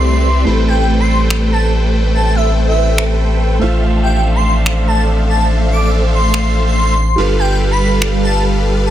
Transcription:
0.00 0.45 C2 medium
0.00 0.43 C3 medium
0.00 3.57 G3 medium
0.00 0.44 C4 medium
0.00 0.43 E4 medium
0.00 0.44 E4 medium
0.00 0.43 G4 medium
0.00 0.44 G4 medium
0.00 0.45 G4 medium
0.00 0.44 B4 medium
0.00 0.44 D5 medium
0.00 0.45 D5 medium
0.00 0.44 E5 medium
0.00 0.51 C6 medium
0.00 swell medium
0.45 3.59 A1 medium
0.45 3.58 A3 medium
0.45 3.59 A3 medium
0.45 7.14 C4 medium
0.45 3.60 C4 medium
0.45 3.58 E4 medium
0.45 3.59 G4 medium
0.45 3.59 A4 medium
0.45 3.59 B4 medium
0.45 3.59 C5 medium
0.45 3.59 G5 medium
0.45 3.59 B5 medium
0.68 0.75 G5 medium
0.79 0.85 G5 medium
1.00 1.06 C6 medium
1.10 1.17 C6 medium
1.30 finger snap medium
1.52 1.66 A5 medium
2.15 2.22 A5 medium
2.26 2.32 A5 medium
2.35 2.50 E5 medium
2.68 2.98 E5 loud
2.98 finger snap medium
3.59 7.16 A1 medium
3.59 7.14 F3 medium
3.59 6.94 A3 medium
3.59 6.95 A3 medium
3.59 7.14 D4 medium
3.59 6.94 A4 medium
3.59 6.95 A4 medium
3.59 6.95 C5 medium
3.59 6.95 E5 medium
3.59 6.95 F5 medium
3.59 6.95 E6 medium
3.63 6.96 F4 medium
4.03 4.10 G5 medium
4.14 4.21 G5 medium
4.35 4.42 C6 medium
4.45 4.52 C6 medium
4.66 finger snap medium
4.87 5.02 A5 medium
5.29 5.44 A5 medium
5.71 5.78 D6 medium
5.82 5.89 D6 medium
6.13 6.55 C6 medium
6.34 finger snap medium
6.66 7.22 C6 loud
7.16 8.90 G1 medium
7.16 8.90 G3 medium
7.16 8.90 D4 medium
7.16 8.90 F4 medium
7.16 8.90 G4 medium
7.16 8.90 A4 medium
7.16 8.90 B4 medium
7.16 8.90 F5 medium
7.39 7.46 G5 medium
7.50 7.56 G5 medium
7.71 7.77 B5 medium
7.81 7.88 B5 medium
8.02 finger snap medium
8.23 8.38 A5 medium
8.86 8.90 A5 medium

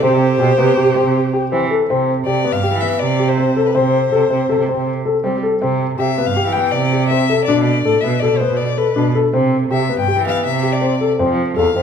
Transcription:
0.02 0.11 C3 medium
0.02 0.23 C4 medium
0.02 1.67 G4 medium
0.02 1.49 C5 medium
0.13 0.35 C3 medium
0.40 0.56 B2 medium
0.40 0.50 G4 medium
0.58 0.74 C3 medium
0.58 0.69 B3 medium
0.77 0.86 C3 medium
0.77 0.88 G4 medium
0.87 0.95 C3 medium
0.96 1.17 C4 medium
1.06 1.21 C3 medium
1.34 1.44 G4 medium
1.52 1.67 E3 medium
1.52 1.62 C4 medium
1.71 1.81 A4 medium
1.89 2.19 C3 medium
1.89 2.10 C4 medium
2.26 2.49 C3 medium
2.26 2.37 G4 medium
2.26 2.54 D5 medium
2.45 2.55 B3 medium
2.52 2.70 G2 medium
2.52 2.82 F5 medium
2.63 2.74 G4 medium
2.73 2.88 E3 medium
2.80 3.02 B3 medium
2.80 3.01 E5 medium
2.99 3.61 C3 medium
2.99 3.30 D5 medium
3.20 3.30 G4 medium
3.29 3.67 C5 medium
3.38 3.48 C4 medium
3.57 3.67 A4 medium
3.66 3.77 B4 medium
3.75 3.83 C3 medium
3.75 3.95 C4 medium
3.75 4.87 C5 medium
3.85 4.08 C3 medium
4.12 4.28 C3 medium
4.12 4.23 A4 medium
4.30 4.46 C3 medium
4.30 4.41 C4 medium
4.49 4.57 C3 medium
4.49 4.60 A4 medium
4.59 4.66 C3 medium
4.69 4.89 C4 medium
4.77 4.92 C3 medium
5.05 5.16 A4 medium
5.24 5.39 G3 medium
5.24 5.34 C4 medium
5.43 5.53 A4 medium
5.61 5.91 C3 medium
5.61 5.82 C4 medium
5.99 6.21 C3 medium
5.99 6.09 G4 medium
5.99 6.27 E5 medium
6.18 6.28 B3 medium
6.26 6.42 G2 medium
6.26 6.54 F5 medium
6.37 6.47 G4 medium
6.45 6.60 E3 medium
6.52 6.75 B3 medium
6.52 6.73 G5 medium
6.71 7.33 C3 medium
6.71 7.07 D5 medium
6.92 7.02 G4 medium
7.08 7.21 C4 medium
7.08 7.44 E5 medium
7.29 7.39 A4 medium
7.44 7.68 D4 medium
7.44 7.62 D5 medium
7.49 7.56 B2 medium
7.58 7.80 B2 medium
7.63 8.02 D5 medium
7.85 8.00 A2 medium
7.85 7.95 A4 medium
8.00 8.14 B3 medium
8.00 8.21 E5 medium
8.04 8.19 B2 medium
8.19 8.30 B2 medium
8.19 8.33 A4 medium
8.19 8.39 D5 medium
8.33 8.40 B2 medium
8.37 8.61 B3 medium
8.37 8.58 C5 medium
8.51 8.65 B2 medium
8.56 8.79 D5 medium
8.77 8.88 A4 medium
8.77 9.15 B4 medium
8.96 9.12 B2 medium
8.96 9.06 D4 medium
9.15 9.25 A4 medium
9.34 9.64 C3 medium
9.34 9.54 C4 medium
9.71 9.93 C3 medium
9.71 9.81 G4 medium
9.71 9.97 E5 medium
9.89 9.99 B3 medium
9.99 10.14 G2 medium
9.99 10.25 G5 medium
10.08 10.18 G4 medium
10.18 10.33 E3 medium
10.26 10.47 B3 medium
10.26 10.44 F5 medium
10.45 11.05 C3 medium
10.45 10.74 E5 medium
10.63 10.73 G4 medium
10.72 11.10 D5 medium
10.82 10.92 C4 medium
11.01 11.11 A4 medium
11.19 11.27 F2 medium
11.19 11.40 C4 medium
11.29 11.52 F3 medium
11.56 11.72 E2 medium
11.56 11.67 A4 medium
11.56 11.82 F5 medium
11.76 11.82 F2 medium
11.76 11.82 C4 medium

